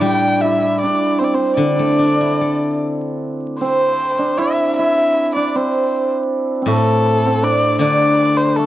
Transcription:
Already playing: guzheng A2, hammered dulcimer D4 E4 A4
0.01 guzheng G3, erhu G5
0.06 hammered dulcimer G4
0.38 hammered dulcimer G4, erhu E5
0.44 hammered dulcimer E4
0.81 hammered dulcimer D4, erhu D5
1.19 hammered dulcimer C4, erhu C5
1.24 erhu D5
1.34 hammered dulcimer C4, erhu C5
1.57 guzheng D3, hammered dulcimer D4, erhu D5
1.79 guzheng A3
1.99 guzheng D4
2.21 guzheng E4
2.41 guzheng A4
3.60 hammered dulcimer C4, erhu C5
4.19 hammered dulcimer D4
4.37 hammered dulcimer E4, erhu E5
4.76 hammered dulcimer E4, erhu E5
5.35 hammered dulcimer D4, erhu D5
5.47 erhu D5
5.55 hammered dulcimer C4, erhu C5
6.62 hammered dulcimer C4
6.66 guzheng A2, hammered dulcimer A3
6.71 erhu A4
7.26 hammered dulcimer C4
7.42 hammered dulcimer D4, erhu D5
7.79 guzheng D3, hammered dulcimer D4, erhu D5
8.37 erhu C5
8.56 hammered dulcimer A3, erhu A4

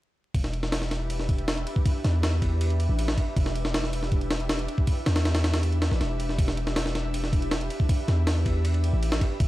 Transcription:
0.34 808-style bass E1, ambient pad D4 E4 G4 B4 E5, kick, ride
0.44 snare
0.53 ride
0.63 snare
0.72 snare, ride
0.82 snare
0.91 snare, ride
1.10 ride
1.20 snare
1.29 kick, ride
1.38 ride
1.48 snare, ride
1.57 ride
1.67 ride
1.76 kick
1.85 ambient pad D4 E4 G4 B4 E5, kick, ride
2.04 808-style bass E2, snare, ride
2.23 snare, ride
2.42 kick, ride
2.61 ride
2.70 ride
2.80 ride
2.89 808-style bass A1
2.99 ride
3.08 snare
3.18 kick, ride
3.36 808-style bass E1, ambient pad D4 E4 G4 B4 E5, kick, ride
3.46 snare
3.55 ride
3.65 snare
3.74 snare, ride
3.84 snare
3.93 ride
4.03 snare
4.12 kick, ride
4.21 ride
4.31 snare, ride
4.40 ride
4.49 snare, ride
4.59 ride
4.68 ride
4.78 kick
4.87 ambient pad D4 E4 G4 B4 E5, kick, ride
5.06 808-style bass E2, snare, ride
5.16 snare, ride
5.25 snare, ride
5.35 snare, ride
5.44 snare, ride
5.54 snare, ride
5.63 ride
5.72 ride
5.82 snare, ride
5.91 808-style bass A1, snare
6.01 808-style bass E1, snare, ride
6.20 ride
6.29 snare
6.38 808-style bass E1, ambient pad D4 E4 G4 B4 E5, kick, ride
6.48 snare
6.57 ride
6.67 snare
6.76 snare, ride
6.86 snare
6.95 snare, ride
7.14 ride
7.24 snare
7.33 kick, ride
7.42 ride
7.51 snare, ride
7.61 ride
7.70 ride
7.80 kick
7.89 ambient pad D4 E4 G4 B4 E5, kick, ride
8.08 808-style bass E2, snare, ride
8.27 snare, ride
8.46 kick, ride
8.65 ride
8.74 ride
8.84 ride
8.93 808-style bass A1
9.03 ride
9.12 snare
9.21 kick, ride
9.40 808-style bass E1, ambient pad D4 E4 G4 B4 E5, kick, ride

